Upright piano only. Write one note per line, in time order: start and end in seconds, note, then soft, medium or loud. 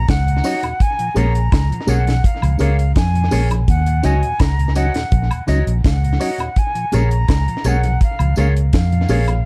0.44 0.65 D#4 loud
0.44 0.61 F#4 loud
0.44 0.61 C#5 loud
0.62 0.70 F#4 soft
0.62 0.70 C#5 soft
1.15 1.37 G#4 medium
1.15 1.37 A#4 medium
1.15 1.37 C#5 loud
1.87 2.09 G#4 medium
1.87 2.09 A#4 medium
1.87 2.09 C#5 medium
2.59 2.81 G#4 medium
2.59 2.81 A#4 medium
2.59 2.81 C#5 loud
3.31 3.53 G#4 loud
3.31 3.50 A#4 medium
3.31 3.50 C#5 loud
3.51 3.58 A#4 soft
3.51 3.58 C#5 soft
4.03 4.25 F#4 loud
4.03 4.25 C#5 medium
4.03 4.25 D#5 loud
4.76 4.97 F#4 medium
4.76 4.97 C#5 medium
4.76 4.98 D#5 loud
5.47 5.69 F#4 medium
5.47 5.69 C#5 medium
5.47 5.69 D#5 loud
6.20 6.41 F#4 loud
6.20 6.38 C#5 medium
6.20 6.38 D#5 loud
6.40 6.47 C#5 soft
6.40 6.47 D#5 soft
6.93 7.14 G#4 loud
6.93 7.14 A#4 medium
6.93 7.14 C#5 loud
7.65 7.86 G#4 medium
7.65 7.86 A#4 medium
7.65 7.86 C#5 medium
8.37 8.58 G#4 medium
8.37 8.58 A#4 medium
8.37 8.58 C#5 medium
9.09 9.30 G#4 loud
9.09 9.27 A#4 loud
9.09 9.27 C#5 loud
9.28 9.35 A#4 soft
9.28 9.35 C#5 soft